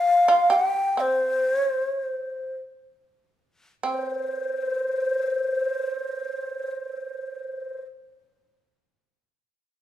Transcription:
Already playing: shamisen F4, shakuhachi F5
0.28 shamisen F4
0.50 shamisen G4, shakuhachi G5
0.97 shamisen C4, shakuhachi C5
1.55 shakuhachi C#5
1.70 shakuhachi C5
1.87 shakuhachi C#5
2.02 shakuhachi C5
3.83 shamisen C4, shakuhachi C5

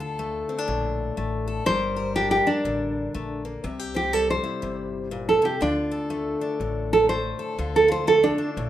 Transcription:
Already playing: upright bass D2, steel-string acoustic guitar D3 D4 F4
0.00 steel-string acoustic guitar A4
0.19 steel-string acoustic guitar A3
0.49 steel-string acoustic guitar C4
0.58 steel-string acoustic guitar D4
0.68 upright bass A#1, steel-string acoustic guitar A2
1.17 upright bass A1, steel-string acoustic guitar A3
1.48 steel-string acoustic guitar A4
1.66 upright bass G1, steel-string acoustic guitar G3 A#4, nylon-string guitar C5
1.96 steel-string acoustic guitar A#4
2.16 steel-string acoustic guitar D4, nylon-string guitar G4
2.31 nylon-string guitar G4
2.47 steel-string acoustic guitar D4, nylon-string guitar D4
2.65 upright bass A1, steel-string acoustic guitar D3
3.14 upright bass A#1, steel-string acoustic guitar A3
3.45 steel-string acoustic guitar A#3
3.64 upright bass C2, steel-string acoustic guitar C3 E4
3.79 steel-string acoustic guitar G4
3.94 nylon-string guitar G4, steel-string acoustic guitar C5
4.13 steel-string acoustic guitar G3, nylon-string guitar A4
4.30 nylon-string guitar C5
4.44 steel-string acoustic guitar E4
4.62 upright bass G1, steel-string acoustic guitar C3
5.11 steel-string acoustic guitar A#2
5.29 nylon-string guitar A4
5.42 steel-string acoustic guitar C3, nylon-string guitar G4
5.61 upright bass D2, steel-string acoustic guitar D3 F4, nylon-string guitar D4
5.91 steel-string acoustic guitar A4
6.10 steel-string acoustic guitar A3
6.41 steel-string acoustic guitar D4
6.60 upright bass A1, steel-string acoustic guitar A2
6.93 nylon-string guitar A4
7.09 steel-string acoustic guitar A3, nylon-string guitar C5
7.39 steel-string acoustic guitar A4
7.58 upright bass D2, steel-string acoustic guitar D3 F4
7.76 nylon-string guitar A4
7.88 steel-string acoustic guitar F4, nylon-string guitar C5
8.07 steel-string acoustic guitar A3, nylon-string guitar A4
8.23 nylon-string guitar D4
8.38 steel-string acoustic guitar D4
8.57 upright bass A#1, steel-string acoustic guitar A2

